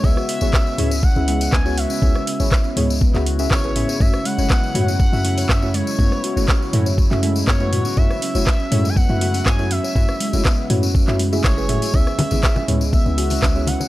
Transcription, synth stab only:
\new Staff \with { instrumentName = "Synth stab" } { \time 4/4 \key fis \dorian \tempo 4 = 121 <b cis' e' gis' cis''>16 r8 <b cis' e' gis' cis''>16 r8 <b cis' e' gis' cis''>16 r8 <b cis' e' gis' e''>16 <b cis' e' gis' e''>8. <b cis' e' gis' cis''>16 r8 | <b cis' e' gis' cis''>16 r8 <b cis' e' gis' cis''>16 r8 <b cis' e' gis' cis''>16 r8 <b cis' e' gis' e''>16 r16 <b cis' e' gis' e''>8 <b cis' e' gis' b'>16 <b cis' e' gis' e''>8 | <a cis' e' fis' cis''>16 r8 <a cis' e' fis' cis''>16 r8 <a cis' e' fis' cis''>16 r8 <a cis' e' fis' e''>16 <a cis' e' fis' e''>8. <a cis' e' fis' cis''>16 r8 | <a cis' e' fis' cis''>16 r8 <a cis' e' fis' cis''>16 r8 <a cis' e' fis' cis''>16 r8 <a cis' e' fis' e''>16 <a cis' e' fis' e''>8. <a cis' e' fis' cis''>16 r8 |
<a cis' e' fis' cis''>16 r8 <a cis' e' fis' cis''>16 r8 <a cis' e' fis' cis''>16 r8 <a cis' e' fis' e''>16 <a cis' e' fis' e''>8. <a cis' e' fis' cis''>16 r8 | <a cis' e' fis' cis''>16 r8 <a cis' e' fis' cis''>16 r8 <a cis' e' fis' cis''>16 r8 <a cis' e' fis' e''>16 r16 <a cis' e' fis' e''>8 <a cis' e' fis' b'>16 <a cis' e' fis' e''>8 | <b cis' e' gis' cis''>16 r8 <b cis' e' gis' cis''>16 r8 <b cis' e' gis' cis''>16 r8 <b cis' e' gis' e''>16 <b cis' e' gis' e''>8. <b cis' e' gis' cis''>16 r8 | }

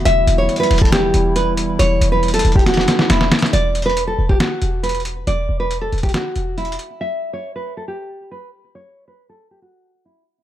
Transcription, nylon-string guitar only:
\new Staff \with { instrumentName = "Nylon-string guitar" } { \time 4/4 \key e \dorian \tempo 4 = 138 e''8. cis''8 b'8 a'16 g'4 b'8 r8 | cis''8. b'8 a'8 g'16 fis'4 e'8 r8 | d''8. b'8 a'8 g'16 fis'4 b'8 r8 | d''8. b'8 a'8 g'16 fis'4 e'8 r8 |
e''8. cis''8 b'8 a'16 g'4 b'8 r8 | cis''8. b'8 a'8 g'16 fis'4 e'8 r8 | }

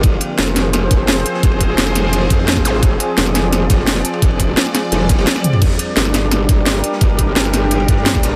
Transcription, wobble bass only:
\new Staff \with { instrumentName = "Wobble bass" } { \clef bass \time 4/4 \key f \dorian \tempo 4 = 172 f,,8 r8 f,,4. f,,4 r8 | f,,4 f,,4. f,4 aes,,8 | f,,8 r8 f,,4. f,,4 r8 | f,,4 r4 f,,4 r4 |
g,,8 r8 g,,4. g,,4 r8 | g,,4 g,,4. g,4 bes,,8 | }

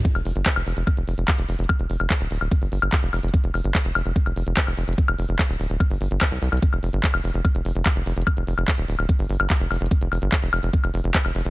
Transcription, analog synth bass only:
\new Staff \with { instrumentName = "Analog synth bass" } { \clef bass \time 4/4 \key c \phrygian \tempo 4 = 146 r16 f,,16 f,,16 g,,16 r16 f,,16 f,,16 f,,16 r16 f,,16 f,,16 f,,16 r16 f,,16 f,,16 f,,16 | r16 f,,16 f,,16 f,,16 r16 ees,,16 ees,,16 ees,,16 r16 g,,16 g,,16 g,,16 r16 f,,16 f,,16 f,,16 | r16 f,,16 f,,16 g,,16 r16 f,,16 f,,16 f,,16 r16 f,,16 f,,16 f,,16 r16 f,,16 f,,16 f,,16 | r16 f,,16 f,,16 f,,16 r16 ees,,16 ees,,16 ees,,16 r16 g,,16 g,,16 g,,16 r16 c,16 c,16 c,16 |
r16 f,,16 f,,16 g,,16 r16 f,,16 f,,16 f,,16 r16 f,,16 f,,16 f,,16 r16 f,,16 f,,16 f,,16 | r16 f,,16 f,,16 f,,16 r16 ees,,16 ees,,16 ees,,16 r16 g,,16 g,,16 g,,16 r16 f,,16 f,,16 f,,16 | r16 f,,16 f,,16 g,,16 r16 f,,16 f,,16 f,,16 r16 f,,16 f,,16 f,,16 r16 f,,16 f,,16 f,,16 | }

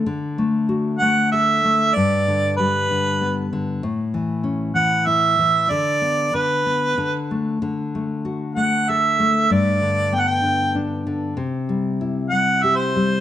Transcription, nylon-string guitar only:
\new Staff \with { instrumentName = "Nylon-string guitar" } { \clef bass \time 3/4 \key d \mixolydian \tempo 4 = 95 d8 a8 fis'8 a8 a'8 a8 | g,8 d8 g8 d8 b8 d8 | a,8 e8 cis'8 e8 e'8 e8 | d8 b8 d8 b8 d8 a8 |
d8 a8 fis'8 a8 a'8 a8 | g,8 d8 b8 d8 d'8 d8 | c8 g8 e'8 g8 g'8 g8 | }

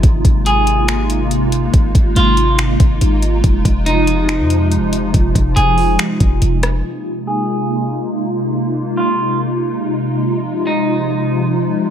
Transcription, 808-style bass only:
\new Staff \with { instrumentName = "808-style bass" } { \clef bass \time 4/4 \key aes \major \tempo 4 = 141 aes,,8 aes,,2.~ aes,,8 | aes,,8 aes,,8 aes,,4. aes,,8 aes,,4 | f,,8 f,,4.~ f,,16 f,8.~ f,32 f,,8.~ f,,32 | f,,8 f,,8 f,,4 r8 f,,8 f,,4 |
r1 | r1 | r1 | }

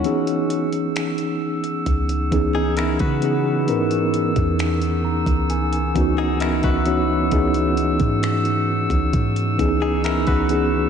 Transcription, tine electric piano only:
\new Staff \with { instrumentName = "Tine electric piano" } { \time 4/4 \key des \dorian \tempo 4 = 66 << { r1 | r4. bes''8 aes''16 aes''8 ges''16 fes''16 ees''16 des''8 | r1 | } \\ { <fes ces' des' ees' aes'>4. r4 <fes ces' des' ees' aes'>4 <fes ces' des' ees' aes'>8 | <fes ces' des' ees' bes'>4. r4 <fes ces' des' ees' ges'>4 <fes ces' des' ees' ges'>8 | <fes ces' des' ees' aes'>4. r4 <fes ces' des' ees' aes'>4 <fes ces' des' ees' aes'>8 | } >> }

